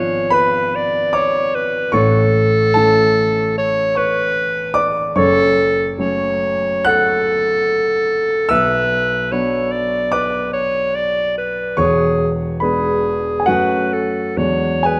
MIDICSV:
0, 0, Header, 1, 3, 480
1, 0, Start_track
1, 0, Key_signature, 3, "major"
1, 0, Tempo, 849858
1, 649, Tempo, 805369
1, 1121, Time_signature, 4, 2, 24, 8
1, 3529, Tempo, 882353
1, 4009, Tempo, 821918
1, 7369, Tempo, 854701
1, 7849, Tempo, 928793
1, 8638, End_track
2, 0, Start_track
2, 0, Title_t, "Clarinet"
2, 0, Program_c, 0, 71
2, 0, Note_on_c, 0, 73, 85
2, 188, Note_on_c, 0, 71, 80
2, 197, Note_off_c, 0, 73, 0
2, 426, Note_on_c, 0, 74, 82
2, 435, Note_off_c, 0, 71, 0
2, 646, Note_on_c, 0, 73, 87
2, 655, Note_off_c, 0, 74, 0
2, 886, Note_on_c, 0, 71, 78
2, 895, Note_off_c, 0, 73, 0
2, 1119, Note_on_c, 0, 69, 101
2, 1128, Note_off_c, 0, 71, 0
2, 2093, Note_off_c, 0, 69, 0
2, 2098, Note_on_c, 0, 73, 89
2, 2330, Note_on_c, 0, 71, 90
2, 2339, Note_off_c, 0, 73, 0
2, 2886, Note_off_c, 0, 71, 0
2, 3047, Note_on_c, 0, 69, 101
2, 3506, Note_off_c, 0, 69, 0
2, 3535, Note_on_c, 0, 73, 75
2, 4011, Note_on_c, 0, 69, 94
2, 4020, Note_off_c, 0, 73, 0
2, 4965, Note_on_c, 0, 71, 96
2, 4974, Note_off_c, 0, 69, 0
2, 5442, Note_on_c, 0, 73, 75
2, 5451, Note_off_c, 0, 71, 0
2, 5675, Note_on_c, 0, 74, 81
2, 5684, Note_off_c, 0, 73, 0
2, 5913, Note_on_c, 0, 71, 80
2, 5922, Note_off_c, 0, 74, 0
2, 6147, Note_off_c, 0, 71, 0
2, 6151, Note_on_c, 0, 73, 86
2, 6396, Note_on_c, 0, 74, 91
2, 6405, Note_off_c, 0, 73, 0
2, 6641, Note_off_c, 0, 74, 0
2, 6646, Note_on_c, 0, 71, 77
2, 6890, Note_on_c, 0, 68, 89
2, 6899, Note_off_c, 0, 71, 0
2, 7210, Note_off_c, 0, 68, 0
2, 7367, Note_on_c, 0, 68, 74
2, 7847, Note_on_c, 0, 71, 79
2, 7855, Note_off_c, 0, 68, 0
2, 8087, Note_on_c, 0, 69, 67
2, 8094, Note_off_c, 0, 71, 0
2, 8315, Note_on_c, 0, 73, 90
2, 8323, Note_off_c, 0, 69, 0
2, 8567, Note_on_c, 0, 71, 67
2, 8574, Note_off_c, 0, 73, 0
2, 8638, Note_off_c, 0, 71, 0
2, 8638, End_track
3, 0, Start_track
3, 0, Title_t, "Grand piano"
3, 0, Program_c, 1, 0
3, 0, Control_c, 1, 64, 127
3, 0, Note_on_c, 1, 32, 54
3, 0, Note_on_c, 1, 44, 59
3, 0, Note_on_c, 1, 53, 50
3, 0, Note_on_c, 1, 59, 49
3, 0, Note_on_c, 1, 62, 53
3, 0, Note_on_c, 1, 65, 68
3, 0, Note_on_c, 1, 68, 74
3, 0, Note_on_c, 1, 77, 93
3, 0, Note_on_c, 1, 80, 96
3, 161, Note_off_c, 1, 65, 0
3, 172, Note_on_c, 1, 83, 113
3, 177, Note_on_c, 1, 71, 83
3, 181, Note_off_c, 1, 77, 0
3, 624, Note_off_c, 1, 71, 0
3, 638, Note_on_c, 1, 86, 105
3, 644, Note_off_c, 1, 83, 0
3, 644, Note_on_c, 1, 74, 77
3, 1094, Note_off_c, 1, 74, 0
3, 1100, Note_off_c, 1, 53, 0
3, 1100, Note_off_c, 1, 59, 0
3, 1101, Note_off_c, 1, 62, 0
3, 1108, Note_on_c, 1, 85, 106
3, 1113, Note_on_c, 1, 33, 59
3, 1115, Note_off_c, 1, 86, 0
3, 1116, Note_on_c, 1, 73, 81
3, 1118, Note_on_c, 1, 45, 65
3, 1130, Control_c, 1, 64, 0
3, 1132, Note_off_c, 1, 44, 0
3, 1134, Note_off_c, 1, 68, 0
3, 1135, Note_off_c, 1, 80, 0
3, 1136, Note_off_c, 1, 32, 0
3, 1232, Control_c, 1, 64, 127
3, 1582, Note_off_c, 1, 73, 0
3, 1590, Note_off_c, 1, 33, 0
3, 1593, Note_off_c, 1, 45, 0
3, 1597, Note_on_c, 1, 81, 102
3, 1602, Note_off_c, 1, 85, 0
3, 1606, Note_on_c, 1, 69, 78
3, 1608, Note_on_c, 1, 57, 52
3, 1609, Note_on_c, 1, 52, 52
3, 1614, Note_on_c, 1, 61, 51
3, 2304, Note_off_c, 1, 69, 0
3, 2320, Note_on_c, 1, 85, 93
3, 2324, Note_off_c, 1, 81, 0
3, 2326, Note_on_c, 1, 73, 77
3, 2778, Note_off_c, 1, 73, 0
3, 2789, Note_on_c, 1, 86, 117
3, 2797, Note_on_c, 1, 74, 78
3, 2798, Note_off_c, 1, 85, 0
3, 3024, Note_off_c, 1, 57, 0
3, 3025, Note_off_c, 1, 52, 0
3, 3027, Note_off_c, 1, 61, 0
3, 3028, Note_off_c, 1, 74, 0
3, 3038, Note_on_c, 1, 85, 95
3, 3039, Note_on_c, 1, 30, 70
3, 3041, Note_off_c, 1, 86, 0
3, 3044, Note_on_c, 1, 73, 90
3, 3048, Note_on_c, 1, 42, 71
3, 3057, Control_c, 1, 64, 0
3, 3150, Control_c, 1, 64, 127
3, 3512, Note_off_c, 1, 30, 0
3, 3516, Note_off_c, 1, 42, 0
3, 3530, Note_on_c, 1, 54, 55
3, 3532, Note_on_c, 1, 57, 49
3, 3537, Note_on_c, 1, 61, 62
3, 3987, Note_off_c, 1, 73, 0
3, 3999, Note_on_c, 1, 90, 127
3, 4005, Note_on_c, 1, 78, 95
3, 4006, Note_off_c, 1, 85, 0
3, 4944, Note_off_c, 1, 78, 0
3, 4947, Note_off_c, 1, 54, 0
3, 4948, Note_off_c, 1, 57, 0
3, 4950, Note_off_c, 1, 61, 0
3, 4957, Note_on_c, 1, 88, 115
3, 4964, Note_off_c, 1, 90, 0
3, 4968, Note_on_c, 1, 76, 78
3, 4969, Note_on_c, 1, 35, 61
3, 4979, Control_c, 1, 64, 0
3, 5083, Control_c, 1, 64, 127
3, 5426, Note_off_c, 1, 35, 0
3, 5444, Note_on_c, 1, 54, 53
3, 5447, Note_on_c, 1, 59, 55
3, 5448, Note_on_c, 1, 62, 58
3, 5893, Note_off_c, 1, 76, 0
3, 5908, Note_on_c, 1, 86, 111
3, 5911, Note_off_c, 1, 88, 0
3, 5914, Note_on_c, 1, 74, 80
3, 6140, Note_off_c, 1, 74, 0
3, 6154, Note_off_c, 1, 86, 0
3, 6863, Note_off_c, 1, 54, 0
3, 6864, Note_off_c, 1, 59, 0
3, 6865, Note_off_c, 1, 62, 0
3, 6874, Note_on_c, 1, 85, 101
3, 6877, Note_on_c, 1, 28, 63
3, 6881, Note_on_c, 1, 73, 85
3, 6882, Note_on_c, 1, 40, 64
3, 6893, Control_c, 1, 64, 0
3, 6996, Control_c, 1, 64, 127
3, 7344, Note_off_c, 1, 73, 0
3, 7351, Note_off_c, 1, 28, 0
3, 7354, Note_off_c, 1, 40, 0
3, 7360, Note_on_c, 1, 83, 86
3, 7364, Note_off_c, 1, 85, 0
3, 7369, Note_on_c, 1, 71, 67
3, 7371, Note_on_c, 1, 56, 50
3, 7372, Note_on_c, 1, 59, 47
3, 7377, Note_on_c, 1, 62, 50
3, 7786, Note_off_c, 1, 71, 0
3, 7804, Note_off_c, 1, 83, 0
3, 7807, Note_on_c, 1, 80, 70
3, 7828, Note_off_c, 1, 56, 0
3, 7828, Note_off_c, 1, 59, 0
3, 7831, Note_off_c, 1, 62, 0
3, 7842, Note_on_c, 1, 78, 105
3, 7849, Note_off_c, 1, 80, 0
3, 7851, Note_on_c, 1, 66, 77
3, 7852, Note_on_c, 1, 42, 70
3, 7852, Note_on_c, 1, 54, 54
3, 7854, Note_on_c, 1, 57, 56
3, 7859, Control_c, 1, 64, 0
3, 7859, Note_on_c, 1, 61, 55
3, 7955, Control_c, 1, 64, 127
3, 8298, Note_off_c, 1, 54, 0
3, 8298, Note_off_c, 1, 57, 0
3, 8301, Note_off_c, 1, 61, 0
3, 8304, Note_off_c, 1, 42, 0
3, 8313, Note_on_c, 1, 40, 67
3, 8314, Note_on_c, 1, 54, 46
3, 8318, Note_on_c, 1, 56, 46
3, 8320, Note_on_c, 1, 62, 49
3, 8328, Control_c, 1, 64, 0
3, 8428, Control_c, 1, 64, 127
3, 8544, Note_off_c, 1, 66, 0
3, 8551, Note_on_c, 1, 80, 90
3, 8558, Note_on_c, 1, 68, 66
3, 8561, Note_off_c, 1, 78, 0
3, 8638, Note_off_c, 1, 40, 0
3, 8638, Note_off_c, 1, 54, 0
3, 8638, Note_off_c, 1, 56, 0
3, 8638, Note_off_c, 1, 62, 0
3, 8638, Note_off_c, 1, 68, 0
3, 8638, Note_off_c, 1, 80, 0
3, 8638, End_track
0, 0, End_of_file